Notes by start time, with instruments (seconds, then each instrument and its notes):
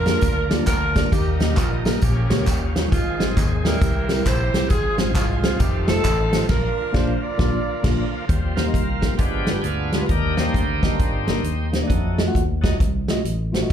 Already playing: fingered electric bass F2, tonewheel organ F3 A#3 D4 A#4, saxophone section D4 F4 A#4
0.05 tine electric piano A#3 D4 F4 G#4, snare, closed hi-hat, tambourine
0.21 fingered electric bass D2, kick, closed hi-hat, tambourine
0.50 tine electric piano A#3 D4 F4 D5, snare, closed hi-hat, tambourine
0.67 fingered electric bass D2, saxophone section D4 F4 A#4, kick, clap, closed hi-hat, tambourine
0.95 tine electric piano A#3 D4 F4 D5, kick, snare, closed hi-hat, tambourine
1.12 fingered electric bass D#2, tine electric piano D#3, tonewheel organ G3 A#3 D#4 A4, saxophone section A#3 D#4 G4, kick, closed hi-hat, tambourine
1.18 tonewheel organ A#4
1.40 tine electric piano A#3 D#4 G4 D#5, saxophone section G4, snare, closed hi-hat, tambourine
1.57 fingered electric bass A#1, saxophone section A#3 F4, kick, clap, closed hi-hat, tambourine
1.85 tine electric piano A#3 D#4 G4 A#4, snare, closed hi-hat, tambourine
2.02 fingered electric bass A#1, tine electric piano A#2, tonewheel organ F3 A#3 C#4 G#4, saxophone section C#4 G4, kick, closed hi-hat, tambourine
2.30 fingered electric bass C#2, tine electric piano A#3 F4 G#4 C#5, saxophone section A#3 C#4 G4, snare, closed hi-hat, tambourine
2.47 fingered electric bass D#2, tonewheel organ D#3 G3 C#4 F4, kick, clap, closed hi-hat, tambourine
2.75 tine electric piano G3 D#4 F4 C#5, snare, closed hi-hat, tambourine
2.91 fingered electric bass G#1, tine electric piano G#2, tonewheel organ D#3 G#3 C4 G4, saxophone section G#3 C4 F4, kick, closed hi-hat, tambourine
2.96 tonewheel organ G#4
3.19 tine electric piano G#3 C4 D#4 C5, snare, closed hi-hat, tambourine
3.36 fingered electric bass D#2, saxophone section G#4, kick, clap, closed hi-hat, tambourine
3.65 tine electric piano G#3 C4 D#4 D5, saxophone section E4 G4 A#4, snare, closed hi-hat, tambourine
3.80 fingered electric bass C2, tine electric piano C3, tonewheel organ E3 A#3 C4 G4, kick, closed hi-hat, tambourine
4.09 tine electric piano G3 C4 E4 A#4, snare, closed hi-hat, tambourine
4.25 fingered electric bass A#1, saxophone section E4 G4 C5, kick, clap, closed hi-hat, tambourine
4.54 fingered electric bass C2, tine electric piano G3 C4 E4 G4, snare, closed hi-hat, tambourine
4.70 fingered electric bass G#1, tine electric piano G#2, tonewheel organ F3 G#3 C4 G#4, saxophone section C4 F4 G#4, kick, closed hi-hat, tambourine
4.98 tine electric piano G#3 C4 F4 C5, saxophone section G#4, snare, closed hi-hat, tambourine
5.15 fingered electric bass C2, saxophone section G#3 C4 F4, kick, clap, closed hi-hat, tambourine
5.43 tine electric piano G#3 C4 F4 C5, snare, closed hi-hat, tambourine
5.59 fingered electric bass F1, tonewheel organ D#3 A3 C4 F4, saxophone section C4 D#4 G4, kick, closed hi-hat, tambourine
5.88 tine electric piano A3 D#4 F4 C5, saxophone section C4 D#4 A4, snare, closed hi-hat, tambourine
6.04 fingered electric bass A1, kick, clap, closed hi-hat, tambourine
6.32 tine electric piano A3 D#4 F4 C5, snare, closed hi-hat, tambourine
6.49 fingered electric bass A#1, tonewheel organ D3 F3 A#3 F4, saxophone section D4 F4 A#4, kick, snare, crash
6.93 fingered electric bass A#1, tine electric piano A#3 D4 F4 D5, saxophone section C5, kick, snare
7.22 saxophone section F4 A#4 D5
7.38 fingered electric bass A#1, tine electric piano A#3 D4 F4 D5, kick, snare
7.83 fingered electric bass A#1, tine electric piano A#3 D4 F4 D5, kick, snare, crash
8.28 fingered electric bass D#2, tine electric piano D#3, tonewheel organ F3 G3 C4, kick, closed hi-hat
8.56 tonewheel organ A#3 C4 F4, tine electric piano A#3 D#4 G4 C5, snare, closed hi-hat
8.67 tine electric piano A#3 D#4 G4 D#5
8.74 fingered electric bass C2, kick, closed hi-hat
9.02 tine electric piano A#3 D#4 G4 A#4, kick, snare, closed hi-hat
9.17 fingered electric bass G1, tine electric piano G2, tonewheel organ F3 G#3 B3 D4 G4, kick, closed hi-hat
9.47 tine electric piano G#3 F4 G4 B4, snare, closed hi-hat
9.62 fingered electric bass D2, tonewheel organ B3 F4 G#4, closed hi-hat
9.92 tine electric piano G#3 F4 G4 D5, snare, closed hi-hat
10.01 tine electric piano G#3 F4 G4 B4
10.07 fingered electric bass D#2, tine electric piano D#3, tonewheel organ A#3 D#4 G4 A#4, kick, closed hi-hat
10.11 tonewheel organ D4
10.37 tine electric piano A#3 D4 D#4 C5, tonewheel organ A#3 C4 G4, snare, closed hi-hat
10.47 tine electric piano A#3 D4 D#4 C5
10.54 fingered electric bass D2, kick, closed hi-hat
10.82 tine electric piano A#3 D4 D#4 D#5, kick, snare, closed hi-hat
10.99 fingered electric bass G1, kick, closed hi-hat
11.28 tonewheel organ D#3 A#3 D4, tine electric piano A#3 D4 D#4 A#4, snare, closed hi-hat
11.43 fingered electric bass D#2, closed hi-hat
11.72 tine electric piano A#3 D4 D#4 C5, snare, closed hi-hat
11.81 tine electric piano A#3 D4 D#4 D5
11.87 fingered electric bass F2, tonewheel organ F#3 A3 D#4, kick, closed hi-hat
12.18 tine electric piano A3 F4 F#4 D#5, snare, closed hi-hat
12.26 tine electric piano A3 F4 F#4 F#5
12.35 fingered electric bass D#2, kick, closed hi-hat
12.61 tonewheel organ F#3 A3 D#4, tine electric piano A3 F4 F#4 D#5, kick, snare, closed hi-hat
12.80 fingered electric bass C2, kick, closed hi-hat
13.08 tine electric piano A3 F4 F#4 D#5, snare, closed hi-hat
13.25 fingered electric bass A1, closed hi-hat
13.52 tine electric piano A3 F4 F#4 C5, snare, closed hi-hat
13.62 tine electric piano A3 F4 F#4 D#5